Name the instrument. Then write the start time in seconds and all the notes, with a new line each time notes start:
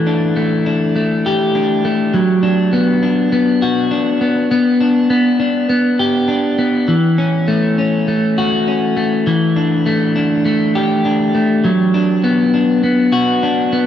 clean electric guitar
Already playing: E3 A3
0.07 D4
0.36 A3
0.66 D4
0.96 A3
1.26 G4
1.55 D4
1.85 A3
2.14 F#3
2.43 D4
2.73 B3
3.03 D4
3.32 B3
3.62 F#4
3.91 D4
4.21 B3
4.51 B3
4.81 D4
5.10 B3
5.40 D4
5.69 B3
5.99 G4
6.28 D4
6.58 B3
6.88 E3
7.18 C#4
7.48 A3
7.78 C#4
8.08 A3
8.38 F#4
8.68 C#4
8.97 A3
9.27 E3
9.56 D4
9.86 A3
10.16 D4
10.45 A3
10.75 G4
11.05 D4
11.34 A3
11.64 F#3
11.94 D4
12.24 B3
12.54 D4
12.83 B3
13.12 F#4
13.43 D4
13.73 B3